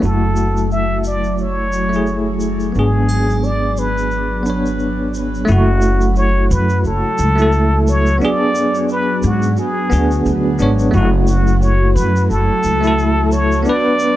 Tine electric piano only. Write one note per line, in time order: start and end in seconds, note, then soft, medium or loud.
0.00 1.86 A3 medium
0.00 1.88 E4 medium
0.05 1.90 F#4 medium
1.89 2.70 A3 medium
1.89 2.72 E4 medium
1.96 2.73 G#4 medium
2.72 4.41 B3 medium
2.72 4.42 D4 medium
2.79 4.44 G#4 medium
4.43 5.43 B3 medium
4.43 5.45 D4 medium
4.50 5.47 C#5 medium
5.45 7.32 A3 medium
5.45 7.34 E4 medium
5.52 7.35 F#4 loud
7.35 8.16 A3 medium
7.35 8.18 E4 medium
7.42 8.19 A4 loud
8.18 9.86 B3 medium
8.18 9.88 D4 medium
8.25 9.90 G#4 loud
9.90 10.55 B3 medium
9.90 10.56 D4 medium
9.90 10.57 G#4 loud
10.59 10.90 B3 medium
10.59 10.90 D4 medium
10.59 10.91 C#5 medium
10.91 12.78 A3 medium
10.91 12.79 E4 medium
10.97 12.81 F#4 loud
12.81 13.61 A3 medium
12.81 13.63 E4 medium
12.87 13.64 A4 loud
13.62 14.16 B3 medium
13.62 14.16 D4 medium
13.69 14.16 B4 loud